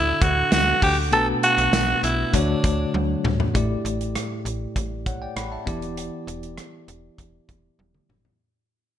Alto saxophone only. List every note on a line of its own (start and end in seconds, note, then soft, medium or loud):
0.00 0.24 E4 loud
0.23 0.52 F#4 loud
0.53 0.81 F#4 loud
0.83 0.97 G4 medium
1.13 1.27 A4 loud
1.43 2.00 F#4 loud
2.04 2.36 E4 medium
2.34 2.95 D4 medium